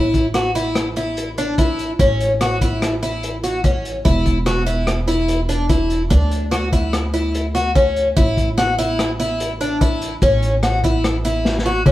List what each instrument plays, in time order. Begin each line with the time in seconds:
Already playing: upright bass A1, twelve-string acoustic guitar E4
0.14 kick, closed hi-hat
0.34 twelve-string acoustic guitar F#4, cross-stick, closed hi-hat
0.55 twelve-string acoustic guitar E4, closed hi-hat
0.75 cross-stick, closed hi-hat
0.96 twelve-string acoustic guitar E4, closed hi-hat
1.17 closed hi-hat
1.38 twelve-string acoustic guitar D4, closed hi-hat
1.58 twelve-string acoustic guitar E4, kick, closed hi-hat
1.79 closed hi-hat
1.99 upright bass A1, twelve-string acoustic guitar C#4, kick, closed hi-hat
2.21 closed hi-hat
2.41 twelve-string acoustic guitar F#4, cross-stick, closed hi-hat
2.61 twelve-string acoustic guitar E4, kick, closed hi-hat
2.82 cross-stick, closed hi-hat
3.03 twelve-string acoustic guitar E4, closed hi-hat
3.23 closed hi-hat
3.44 twelve-string acoustic guitar F#4, closed hi-hat
3.64 twelve-string acoustic guitar C#4, kick, closed hi-hat
3.85 closed hi-hat
4.05 upright bass E1, twelve-string acoustic guitar E4, kick, closed hi-hat
4.26 kick, closed hi-hat
4.46 twelve-string acoustic guitar F#4, cross-stick, closed hi-hat
4.66 twelve-string acoustic guitar E4, closed hi-hat
4.87 cross-stick, closed hi-hat
5.08 twelve-string acoustic guitar E4, closed hi-hat
5.28 closed hi-hat
5.49 twelve-string acoustic guitar D4, closed hi-hat
5.69 twelve-string acoustic guitar E4, kick, closed hi-hat
5.90 closed hi-hat
6.10 upright bass D2, twelve-string acoustic guitar D4, kick, closed hi-hat
6.31 closed hi-hat
6.51 twelve-string acoustic guitar F#4, cross-stick, closed hi-hat
6.73 twelve-string acoustic guitar E4, kick, closed hi-hat
6.93 cross-stick, closed hi-hat
7.14 twelve-string acoustic guitar E4, closed hi-hat
7.34 closed hi-hat
7.55 twelve-string acoustic guitar F#4, closed hi-hat
7.75 twelve-string acoustic guitar C#4, kick, closed hi-hat
7.96 closed hi-hat
8.17 upright bass A1, twelve-string acoustic guitar E4, kick, closed hi-hat
8.37 kick, closed hi-hat
8.58 twelve-string acoustic guitar F#4, cross-stick, closed hi-hat
8.79 twelve-string acoustic guitar E4, closed hi-hat
8.99 cross-stick, closed hi-hat
9.20 twelve-string acoustic guitar E4, closed hi-hat
9.40 closed hi-hat
9.61 twelve-string acoustic guitar D4, closed hi-hat
9.81 twelve-string acoustic guitar E4, kick, closed hi-hat
10.02 closed hi-hat
10.22 upright bass A1, twelve-string acoustic guitar C#4, kick, closed hi-hat
10.42 closed hi-hat
10.63 twelve-string acoustic guitar F#4, cross-stick, closed hi-hat
10.84 twelve-string acoustic guitar E4, kick, closed hi-hat
11.04 cross-stick, closed hi-hat
11.25 twelve-string acoustic guitar E4, closed hi-hat
11.45 snare
11.59 snare
11.66 twelve-string acoustic guitar F#4
11.86 twelve-string acoustic guitar C#4, kick, mid tom